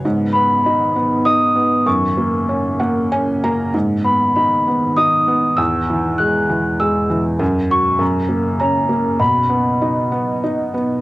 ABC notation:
X:1
M:3/4
L:1/16
Q:1/4=98
K:F#mix
V:1 name="Celesta"
z2 b2 b4 d'4 | c'8 z4 | z2 b2 b4 d'4 | e'4 f'4 e'3 z |
z2 c'2 a4 a4 | b8 z4 |]
V:2 name="Felt piano"
G,,2 B,2 D2 B,2 D2 B,2 | F,,2 A,2 C2 [A,f]2 [Cg]2 [A,a]2 | G,,2 B,2 D2 B,2 D2 B,2 | E,,2 E,2 G,2 E,2 G,2 E,2 |
F,,2 F,2 F,,2 A,2 C2 A,2 | B,,2 B,2 D2 B,2 D2 B,2 |]
V:3 name="Ambient pad" clef=bass
[G,,D,B,]12 | [F,,C,A,]12 | [G,,D,B,]12 | [E,,B,,G,]12 |
C,12 | [B,,F,D]12 |]